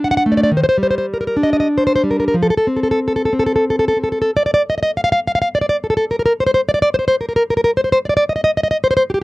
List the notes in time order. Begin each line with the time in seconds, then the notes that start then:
Already playing: D4
0.04 F#5
0.11 F#5
0.17 F#5
0.26 A3
0.32 D5
0.37 D5
0.43 D5
0.51 D#3
0.57 C5
0.64 C5
0.69 C5
0.78 G3
0.83 C5
0.91 C5
0.98 C5
1.14 A#4
1.21 A#4
1.27 A#4
1.37 D4
1.43 D#5
1.53 D#5
1.60 D#5
1.78 C5
1.87 C5
1.96 C5
2.04 G3
2.11 A#4
2.20 A#4
2.28 A#4
2.34 F3
2.43 A4
2.50 A4
2.57 A4
2.67 C4
2.76 A4
2.83 A4
2.91 A4
3.08 A4
3.16 A4
3.25 A4
3.33 C4
3.39 A4
3.46 A4
3.56 A4
3.70 A4
3.79 A4
3.88 A4
3.97 C4
4.04 A4
4.12 A4
4.22 A4
4.37 D5
4.46 D5
4.54 D5
4.70 D#5
4.78 D#5
4.83 D#5
4.97 F5
5.04 F5
5.12 F5
5.27 F5
5.35 F5
5.42 F5
5.55 D5
5.61 D5
5.69 D5
5.84 A4
5.90 A4
5.97 A4
6.11 A#4
6.19 A#4
6.26 A#4
6.40 C5
6.47 C5
6.54 C5
6.69 D5
6.74 D5
6.82 D5
6.94 C5
6.99 C5
7.08 C5
7.21 A#4
7.29 A#4
7.36 A#4
7.50 A#4
7.57 A#4
7.64 A#4
7.77 C5
7.84 C5
7.92 C5
8.05 D5
8.09 D5
8.17 D5
8.29 D#5
8.36 D#5
8.44 D#5
8.57 D#5
8.63 D#5
8.71 D#5
8.84 C5
8.91 C5
8.97 C5
9.10 G4
9.14 G4